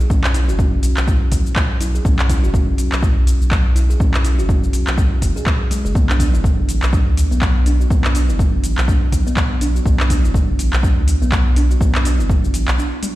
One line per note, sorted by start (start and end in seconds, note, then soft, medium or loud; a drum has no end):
0.00 cabasa soft
0.10 0.50 B1 medium
0.10 0.18 C#4 loud
0.10 kick loud
0.10 cabasa medium
0.24 0.30 E4 medium
0.24 clap loud
0.24 cabasa soft
0.34 0.47 E4 loud
0.34 open hi-hat medium
0.34 cabasa medium
0.48 0.79 F#1 medium
0.48 0.58 F#4 loud
0.48 cabasa soft
0.59 0.72 C#4 loud
0.59 kick loud
0.59 cabasa medium
0.83 0.93 B1 medium
0.83 open hi-hat medium
0.83 cabasa medium
0.97 1.14 B1 medium
0.97 clap medium
0.97 cabasa soft
1.07 1.20 E4 medium
1.07 kick loud
1.07 cabasa medium
1.32 1.42 B1 medium
1.32 kick medium
1.32 open hi-hat medium
1.32 cabasa medium
1.46 cabasa soft
1.56 kick loud
1.56 clap loud
1.56 cabasa medium
1.81 2.00 B1 medium
1.81 1.93 E4 loud
1.81 open hi-hat medium
1.81 cabasa medium
1.95 2.05 G#4 medium
1.95 cabasa soft
2.05 2.45 B1 medium
2.05 2.13 C#4 loud
2.05 kick loud
2.05 cabasa medium
2.19 2.25 E4 medium
2.19 clap medium
2.19 cabasa soft
2.29 2.42 E4 loud
2.29 kick medium
2.29 open hi-hat medium
2.29 cabasa medium
2.43 2.74 F#1 medium
2.43 2.53 F#4 loud
2.43 cabasa soft
2.54 2.67 C#4 loud
2.54 kick loud
2.54 cabasa medium
2.78 2.89 B1 medium
2.78 open hi-hat medium
2.78 cabasa medium
2.92 3.09 B1 medium
2.92 clap medium
2.92 cabasa soft
3.02 3.15 E4 medium
3.02 kick loud
3.02 cabasa medium
3.17 3.34 B1 loud
3.27 open hi-hat medium
3.27 cabasa medium
3.41 3.96 B1 medium
3.41 cabasa soft
3.51 kick loud
3.51 clap loud
3.51 cabasa medium
3.76 3.88 E4 loud
3.76 open hi-hat medium
3.76 cabasa medium
3.90 4.00 G#4 medium
3.90 cabasa soft
4.00 4.40 B1 medium
4.00 4.08 C#4 loud
4.00 kick loud
4.00 cabasa medium
4.14 4.20 E4 medium
4.14 clap medium
4.14 cabasa soft
4.25 4.37 E4 loud
4.25 open hi-hat medium
4.25 cabasa medium
4.38 4.69 F#1 medium
4.38 4.49 F#4 loud
4.38 cabasa soft
4.49 4.62 C#4 loud
4.49 kick loud
4.49 cabasa medium
4.64 cabasa soft
4.73 4.84 B1 medium
4.73 open hi-hat medium
4.73 cabasa medium
4.87 4.97 B1 medium
4.87 clap medium
4.87 cabasa soft
4.98 5.08 B1 loud
4.98 5.10 E4 medium
4.98 kick loud
4.98 cabasa medium
5.22 5.32 F#1 medium
5.22 kick medium
5.22 open hi-hat medium
5.22 cabasa medium
5.36 5.42 G#4 loud
5.36 cabasa soft
5.46 kick loud
5.46 clap medium
5.46 cabasa medium
5.71 5.84 G#3 loud
5.71 open hi-hat medium
5.71 cabasa medium
5.85 5.93 F#1 loud
5.85 5.95 G#4 medium
5.85 cabasa soft
5.95 6.35 B1 medium
5.95 6.03 B3 loud
5.95 kick loud
5.95 cabasa soft
6.09 6.15 D4 medium
6.09 clap medium
6.09 cabasa soft
6.19 6.32 D4 loud
6.19 kick medium
6.19 open hi-hat medium
6.19 cabasa medium
6.34 6.64 F#1 medium
6.34 6.44 E4 loud
6.34 cabasa soft
6.44 kick loud
6.44 cabasa medium
6.68 6.79 A1 medium
6.68 open hi-hat medium
6.68 cabasa medium
6.82 6.99 B1 medium
6.82 clap medium
6.82 cabasa soft
6.93 7.05 D4 medium
6.93 kick loud
6.93 cabasa soft
7.07 7.24 D2 loud
7.17 open hi-hat medium
7.17 cabasa medium
7.31 7.86 B1 medium
7.31 7.41 B3 loud
7.31 cabasa soft
7.42 kick loud
7.42 clap medium
7.42 cabasa medium
7.66 7.79 D4 loud
7.66 open hi-hat medium
7.66 cabasa medium
7.80 7.90 F#4 medium
7.80 cabasa soft
7.90 8.30 B1 loud
7.90 7.98 B3 loud
7.90 kick loud
7.90 cabasa medium
8.04 8.10 D4 medium
8.04 clap medium
8.04 cabasa soft
8.15 8.28 D4 loud
8.15 open hi-hat medium
8.15 cabasa medium
8.29 8.59 F#1 medium
8.29 8.39 E4 loud
8.29 cabasa soft
8.39 kick loud
8.39 cabasa soft
8.63 8.74 A1 medium
8.63 open hi-hat medium
8.63 cabasa medium
8.78 8.95 B1 medium
8.78 clap medium
8.78 cabasa soft
8.88 9.01 D4 medium
8.88 kick loud
8.88 cabasa medium
9.12 9.23 B1 medium
9.12 kick medium
9.12 open hi-hat medium
9.12 cabasa medium
9.27 9.36 B3 loud
9.27 cabasa soft
9.37 kick loud
9.37 clap medium
9.37 cabasa soft
9.61 9.80 B1 medium
9.61 9.74 D4 loud
9.61 open hi-hat medium
9.61 cabasa medium
9.75 9.85 F#4 medium
9.75 cabasa soft
9.86 10.25 B1 loud
9.86 9.93 B3 loud
9.86 kick loud
9.86 cabasa soft
10.00 10.05 D4 medium
10.00 clap medium
10.00 cabasa soft
10.10 10.23 D4 loud
10.10 kick medium
10.10 open hi-hat medium
10.10 cabasa medium
10.24 10.54 F#1 medium
10.24 10.34 E4 loud
10.24 cabasa soft
10.34 kick loud
10.34 cabasa soft
10.59 10.69 A1 medium
10.59 open hi-hat medium
10.59 cabasa medium
10.73 10.90 B1 medium
10.73 clap medium
10.73 cabasa soft
10.83 10.96 D4 medium
10.83 kick loud
10.83 cabasa soft
10.97 11.14 D2 medium
11.08 open hi-hat medium
11.08 cabasa medium
11.22 11.76 B1 medium
11.22 11.32 B3 loud
11.22 cabasa soft
11.32 kick loud
11.32 clap medium
11.32 cabasa medium
11.56 11.69 D4 loud
11.56 open hi-hat medium
11.56 cabasa medium
11.70 11.80 F#4 medium
11.70 cabasa soft
11.81 12.21 B1 medium
11.81 11.88 B3 loud
11.81 kick loud
11.81 cabasa medium
11.95 12.00 D4 medium
11.95 clap medium
11.95 cabasa soft
12.05 12.18 D4 loud
12.05 open hi-hat medium
12.05 cabasa medium
12.19 12.49 F#1 medium
12.19 12.29 E4 loud
12.19 cabasa soft
12.29 kick loud
12.29 cabasa medium
12.44 cabasa soft
12.54 12.64 A1 medium
12.54 open hi-hat medium
12.54 cabasa medium
12.68 12.78 B1 medium
12.68 clap medium
12.68 cabasa soft
12.78 12.91 D4 medium
12.78 cabasa soft
13.03 open hi-hat medium
13.03 high tom medium
13.03 cabasa medium